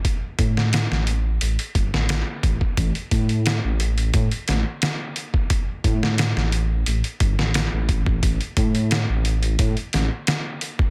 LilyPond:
<<
  \new Staff \with { instrumentName = "Detuned saw bass" } { \clef bass \time 4/4 \key g \major \tempo 4 = 88 r8 a,8. a,,8. a,,16 r16 g,,16 a,,8 r16 a,,16 r16 | a,,16 r16 a,8. a,,8. a,16 r16 a,,16 r4 r16 | r8 a,8. a,,8. a,,16 r16 g,,16 a,,8 a,,8. | a,,16 r16 a,8. a,,8. a,16 r16 a,,16 r4 r16 | }
  \new DrumStaff \with { instrumentName = "Drums" } \drummode { \time 4/4 <hh bd>8 <hh bd>16 sn16 <hh sn>16 sn16 hh8 hh16 hh16 <hh bd>16 sn16 <hh sn>8 <hh bd>16 bd16 | <hh bd>16 hh16 <hh bd>16 hh16 <hh sn>8 hh16 hh16 <hh bd>16 hh16 <hh sn>8 <hh sn>8 hh16 bd16 | <hh bd>8 <hh bd>16 sn16 <hh sn>16 sn16 hh8 hh16 hh16 <hh bd>16 sn16 <hh sn>8 <hh bd>16 bd16 | <hh bd>16 hh16 <hh bd>16 hh16 <hh sn>8 hh16 hh16 <hh bd>16 hh16 <hh sn>8 <hh sn>8 hh16 bd16 | }
>>